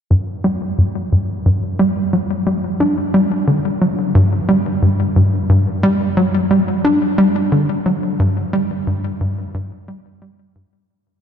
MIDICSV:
0, 0, Header, 1, 2, 480
1, 0, Start_track
1, 0, Tempo, 674157
1, 75, Time_signature, 4, 2, 24, 8
1, 7982, End_track
2, 0, Start_track
2, 0, Title_t, "Analog synth bass"
2, 0, Program_c, 0, 38
2, 74, Note_on_c, 0, 43, 94
2, 255, Note_off_c, 0, 43, 0
2, 314, Note_on_c, 0, 55, 94
2, 435, Note_off_c, 0, 55, 0
2, 556, Note_on_c, 0, 43, 70
2, 736, Note_off_c, 0, 43, 0
2, 798, Note_on_c, 0, 43, 71
2, 977, Note_off_c, 0, 43, 0
2, 1036, Note_on_c, 0, 43, 79
2, 1156, Note_off_c, 0, 43, 0
2, 1276, Note_on_c, 0, 55, 93
2, 1456, Note_off_c, 0, 55, 0
2, 1516, Note_on_c, 0, 54, 67
2, 1636, Note_off_c, 0, 54, 0
2, 1755, Note_on_c, 0, 55, 72
2, 1827, Note_off_c, 0, 55, 0
2, 1995, Note_on_c, 0, 62, 75
2, 2115, Note_off_c, 0, 62, 0
2, 2235, Note_on_c, 0, 55, 93
2, 2356, Note_off_c, 0, 55, 0
2, 2473, Note_on_c, 0, 50, 73
2, 2594, Note_off_c, 0, 50, 0
2, 2715, Note_on_c, 0, 54, 74
2, 2836, Note_off_c, 0, 54, 0
2, 2953, Note_on_c, 0, 43, 104
2, 3135, Note_off_c, 0, 43, 0
2, 3193, Note_on_c, 0, 55, 92
2, 3315, Note_off_c, 0, 55, 0
2, 3433, Note_on_c, 0, 43, 71
2, 3615, Note_off_c, 0, 43, 0
2, 3673, Note_on_c, 0, 43, 70
2, 3855, Note_off_c, 0, 43, 0
2, 3912, Note_on_c, 0, 43, 79
2, 4034, Note_off_c, 0, 43, 0
2, 4152, Note_on_c, 0, 55, 103
2, 4335, Note_off_c, 0, 55, 0
2, 4392, Note_on_c, 0, 54, 79
2, 4514, Note_off_c, 0, 54, 0
2, 4632, Note_on_c, 0, 55, 74
2, 4706, Note_off_c, 0, 55, 0
2, 4873, Note_on_c, 0, 62, 83
2, 4995, Note_off_c, 0, 62, 0
2, 5112, Note_on_c, 0, 55, 90
2, 5234, Note_off_c, 0, 55, 0
2, 5353, Note_on_c, 0, 50, 68
2, 5475, Note_off_c, 0, 50, 0
2, 5594, Note_on_c, 0, 54, 73
2, 5715, Note_off_c, 0, 54, 0
2, 5835, Note_on_c, 0, 43, 95
2, 6016, Note_off_c, 0, 43, 0
2, 6074, Note_on_c, 0, 55, 102
2, 6195, Note_off_c, 0, 55, 0
2, 6314, Note_on_c, 0, 43, 79
2, 6496, Note_off_c, 0, 43, 0
2, 6554, Note_on_c, 0, 43, 73
2, 6736, Note_off_c, 0, 43, 0
2, 6794, Note_on_c, 0, 43, 81
2, 6915, Note_off_c, 0, 43, 0
2, 7035, Note_on_c, 0, 55, 75
2, 7107, Note_off_c, 0, 55, 0
2, 7274, Note_on_c, 0, 55, 71
2, 7456, Note_off_c, 0, 55, 0
2, 7514, Note_on_c, 0, 43, 76
2, 7587, Note_off_c, 0, 43, 0
2, 7982, End_track
0, 0, End_of_file